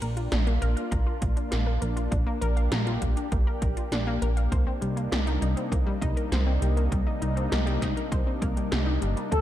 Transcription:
Already playing: A#3 D4 F4
0.02 A#1 A#4, closed hi-hat
0.17 F4, closed hi-hat
0.32 A#1 D4, snare, closed hi-hat
0.47 A#3, closed hi-hat
0.62 A#1 A#4, closed hi-hat
0.77 F5, closed hi-hat
0.91 A#1 A#5, kick, closed hi-hat
1.07 F4
1.21 A#1 A#3, kick, closed hi-hat
1.37 D4, closed hi-hat
1.51 A#1 A#3, snare, closed hi-hat
1.67 A#4
1.82 A#1 A#4, closed hi-hat
1.96 F4, closed hi-hat
2.11 A#1 D4 G4, kick, closed hi-hat
2.26 A#3
2.41 A#1 A#4, closed hi-hat
2.57 F5, closed hi-hat
2.72 A#1 A#5, snare, closed hi-hat
2.87 F4, closed hi-hat
3.02 A#1 A#3, kick, closed hi-hat
3.17 D4, closed hi-hat
3.32 A#1 A#3, kick, closed hi-hat
3.47 A#4
3.62 A#1 A#4, kick, closed hi-hat
3.77 F4, closed hi-hat
3.92 A#1 D4, snare, closed hi-hat
4.07 A#3
4.22 A#1 A#4, closed hi-hat
4.37 F5, closed hi-hat
4.52 C2 C3 G3 A#3 D4 D#4 C5, kick, closed hi-hat
4.67 C4
4.82 C2 G3, closed hi-hat
4.97 A#3, closed hi-hat
5.12 C2 G3, snare, closed hi-hat
5.27 D#4, closed hi-hat
5.42 C2 D#4, closed hi-hat
5.57 C4, closed hi-hat
5.72 C2 A#3, kick, closed hi-hat
5.86 G3
6.01 C2 D#4, kick, closed hi-hat
6.17 A#4, closed hi-hat
6.32 C2 C5, snare, closed hi-hat
6.47 C4
6.62 C2 G3, closed hi-hat
6.77 A#3, closed hi-hat
6.92 C2 G3, kick, closed hi-hat
7.07 D#4
7.22 C2 D#4, closed hi-hat
7.37 C4, closed hi-hat
7.52 C2 A#3, snare, closed hi-hat
7.67 G3, closed hi-hat
7.82 C2 D#4, kick, snare, closed hi-hat
7.97 A#4, closed hi-hat
8.12 C2 C5, kick, closed hi-hat
8.27 C4
8.42 C2 A#3, kick, closed hi-hat
8.57 G3, closed hi-hat
8.72 C2 G4, snare, closed hi-hat
8.87 D#4
9.02 G1 G3, closed hi-hat
9.17 G3, closed hi-hat
9.31 D2 A3 F4 A4, kick, closed hi-hat

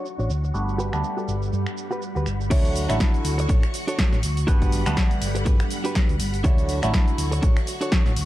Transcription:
Already playing: F#3 A3 D4 E4 F#4 C#5 C#6
0.05 tambourine, cabasa
0.18 A1 D4 F#4 C#5, cabasa
0.30 D2, tambourine, cabasa
0.43 muted clean electric guitar stroke, cabasa
0.54 G1 G3 A3 B3 D4 F#4 F#5 B5, cabasa
0.69 cabasa
0.78 F#4 G4 B4, cabasa
0.92 D2 G3 A3 B3 D4 F#5, finger snap, cabasa
1.03 muted clean electric guitar stroke, cabasa
1.17 F#4 G4 A4, cabasa
1.28 G1, cabasa
1.42 cabasa
1.52 G2, muted clean electric guitar stroke, tambourine, cabasa
1.67 finger snap, cabasa
1.77 tambourine, cabasa
1.91 F#4 G4 B4, cabasa
2.01 tambourine, cabasa
2.15 D2 F#4 G4 B4, tambourine, cabasa
2.26 G1, finger snap, cabasa
2.40 muted clean electric guitar stroke, cabasa
2.50 D2 D3 F#3 A3 D4 E4 F#4 A4 C#5 C#6, kick, closed hi-hat, crash, cabasa
2.65 closed hi-hat, cabasa
2.76 open hi-hat, cabasa
2.89 A1 D3 F#3 A3 E4, finger snap, closed hi-hat, cabasa
3.00 kick, snare, closed hi-hat, cabasa
3.14 closed hi-hat, cabasa
3.25 D2, open hi-hat, cabasa
3.38 muted clean electric guitar stroke, closed hi-hat, cabasa
3.49 D4 F#4 A4 C#5, kick, closed hi-hat, cabasa
3.63 finger snap, cabasa
3.74 muted clean electric guitar stroke, open hi-hat, cabasa
3.87 D4 F#4 A4 C#5, closed hi-hat, cabasa
3.99 kick, snare, closed hi-hat, cabasa
4.13 A1, snare, cabasa
4.23 D2, open hi-hat, cabasa
4.37 closed hi-hat, cabasa
4.47 G1 D3 G3 A3 B3 D4 F#4 G4 B4 F#5 B5, kick, closed hi-hat, cabasa
4.62 kick, closed hi-hat, cabasa
4.72 open hi-hat, cabasa
4.86 D2 D3 G3 A3 B3 F#5, finger snap, snare, closed hi-hat, cabasa
4.97 kick, snare, closed hi-hat, cabasa
5.11 closed hi-hat, cabasa
5.22 G1, open hi-hat, cabasa
5.35 muted clean electric guitar stroke, closed hi-hat, cabasa
5.45 G2 D4 F#4 G4 B4, kick, closed hi-hat, cabasa
5.60 finger snap, cabasa
5.70 muted clean electric guitar stroke, open hi-hat, cabasa
5.84 D4 F#4 G4 B4, closed hi-hat, cabasa
5.95 kick, snare, closed hi-hat, cabasa
6.09 D2, closed hi-hat, cabasa
6.20 G1, open hi-hat, cabasa
6.34 open hi-hat, cabasa
6.44 D2 D3 F#3 A3 D4 E4 F#4 A4 C#5 C#6, kick, closed hi-hat, cabasa
6.58 closed hi-hat, cabasa
6.69 open hi-hat, cabasa
6.82 A1 D3 F#3 A3 E4 C#5, finger snap, closed hi-hat, cabasa
6.94 kick, snare, closed hi-hat, cabasa
7.08 closed hi-hat, cabasa
7.18 D2, open hi-hat, cabasa
7.32 muted clean electric guitar stroke, closed hi-hat, cabasa
7.42 D4 F#4 A4 C#5, kick, closed hi-hat, cabasa
7.57 finger snap, cabasa
7.67 muted clean electric guitar stroke, open hi-hat, cabasa
7.81 D4 F#4 A4 C#5, closed hi-hat, cabasa
7.92 kick, snare, closed hi-hat, cabasa
8.06 A1, snare, cabasa
8.16 D2, open hi-hat, cabasa

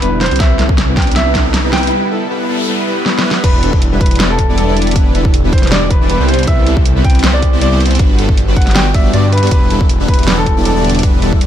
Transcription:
Already playing: D3 G3 B3 E4, riser
0.02 E1 G3 B3 D4 E4 B4, closed hi-hat
0.21 C3 G3 C5, snare, closed hi-hat
0.26 closed hi-hat
0.31 C2 G3 B3 C4 E4 C5, closed hi-hat
0.36 closed hi-hat
0.40 C2 G3 B3 C4 E4 B4 E5, kick, snare, closed hi-hat
0.59 C2 G3 B3 C4 E4 A4, snare, closed hi-hat
0.69 kick
0.78 snare, closed hi-hat
0.88 C2 G3 B3 C4 E4 B4
0.97 G5, kick, snare, closed hi-hat
1.02 closed hi-hat
1.07 closed hi-hat
1.11 closed hi-hat
1.16 C2 G3 B3 C4 E4 B4 E5, snare, closed hi-hat
1.35 C2 G3 C4 E4 A4, kick, snare, closed hi-hat
1.54 snare, closed hi-hat
1.64 C2 G3 B3 C4 E4 B4
1.73 G5, snare, closed hi-hat
1.78 closed hi-hat
1.83 closed hi-hat
1.87 closed hi-hat
1.92 G3 B3 E4 B4, noise sweep
2.11 G3 B3 E4 A4
2.30 G3 B3 E4 B4
2.49 G3 B3 E4 A4
2.68 G3 B3 E4 B4
2.87 G3 B3 E4 B4
3.06 G3 B3 E4 B4, snare
3.18 snare
3.25 G3 B3 E4 B4
3.31 snare
3.44 E1 D3 G3 B3 D4 E4 B4, kick, closed hi-hat, crash
3.63 E1 G3 B3 D4 E4 A4, closed hi-hat
3.73 kick
3.82 closed hi-hat
3.92 E1 G3 B3 D4 E4 B4
4.01 B4, kick, closed hi-hat
4.06 closed hi-hat
4.11 closed hi-hat
4.15 closed hi-hat
4.20 E1 G3 B3 D4 E4 D5, snare, closed hi-hat
4.30 A4
4.39 kick, closed hi-hat
4.49 E1 G3 B3 D4 E4 D5
4.58 A4, closed hi-hat
4.68 E1 G3 B3 D4 E4 D5
4.77 closed hi-hat
4.82 closed hi-hat
4.87 closed hi-hat
4.91 closed hi-hat
4.96 E1 G3 B3 D4 E4 B4, kick, closed hi-hat
5.15 E1 G3 B3 D4 E4 A4, closed hi-hat
5.25 kick
5.34 closed hi-hat
5.44 E1 G3 B3 D4 E4 B4
5.53 C5, kick, closed hi-hat
5.58 closed hi-hat
5.63 snare, closed hi-hat
5.67 closed hi-hat
5.71 E1 G3 B3 D4 E4 D5, snare, closed hi-hat
5.91 B4, kick, closed hi-hat
6.01 E1 G3 B3 D4 E4 D5
6.10 B4, closed hi-hat
6.20 C2 G3 B3 C4 E4 C5
6.28 C3 E4 C5, closed hi-hat
6.34 closed hi-hat
6.39 closed hi-hat
6.43 closed hi-hat
6.47 C2 G3 B3 C4 E4 B4 E5, kick, closed hi-hat
6.66 C2 G3 B3 C4 E4 A4, closed hi-hat
6.77 kick
6.86 closed hi-hat
6.96 C2 G3 B3 C4 E4 B4
7.04 G5, kick, closed hi-hat
7.10 closed hi-hat
7.15 closed hi-hat
7.19 closed hi-hat
7.23 C2 G3 B3 C4 E4 C5, snare, closed hi-hat
7.34 D5
7.42 kick, closed hi-hat
7.53 C2 G3 B3 C4 E4 C5
7.61 D5, closed hi-hat
7.72 C2 G3 B3 C4 E4 C5
7.81 closed hi-hat
7.86 closed hi-hat
7.91 closed hi-hat
7.95 closed hi-hat
7.99 G1 D3 G3 B3 D4 F#4, kick, closed hi-hat
8.18 G1 G3 B3 D4 F#4 A4, closed hi-hat
8.29 kick
8.37 closed hi-hat
8.47 G1 G3 B3 D4 F#4 B4
8.56 F#5, kick, closed hi-hat
8.62 closed hi-hat
8.67 snare, closed hi-hat
8.71 closed hi-hat
8.75 G1 G3 B3 D4 F#4 D5 G5, snare, closed hi-hat
8.94 G1 G3 B3 D4 F#4 D5 E5, kick, closed hi-hat
9.13 G2 G3 B3 D4 F#4 D5, closed hi-hat
9.32 B4, closed hi-hat
9.38 closed hi-hat
9.43 G2 G3 B3 D4 F#4 D5, closed hi-hat
9.47 closed hi-hat
9.51 E1 G3 B3 D4 E4 B4, kick, closed hi-hat
9.70 E1 G3 B3 D4 E4 A4, closed hi-hat
9.81 kick
9.89 closed hi-hat
10.00 E1 G3 B3 D4 E4 B4
10.08 B4, kick, closed hi-hat
10.14 closed hi-hat
10.19 closed hi-hat
10.23 closed hi-hat
10.27 E1 G3 B3 D4 E4 D5, snare, closed hi-hat
10.38 A4
10.46 kick, closed hi-hat
10.57 E1 G3 B3 D4 E4 D5
10.65 A4, closed hi-hat
10.76 E1 G3 B3 D4 E4 D5
10.84 closed hi-hat
10.90 closed hi-hat
10.95 closed hi-hat
10.99 closed hi-hat
11.03 E1 G3 B3 D4 E4 B4, kick, closed hi-hat
11.22 E1 G3 B3 D4 E4 A4, closed hi-hat
11.33 kick
11.41 closed hi-hat

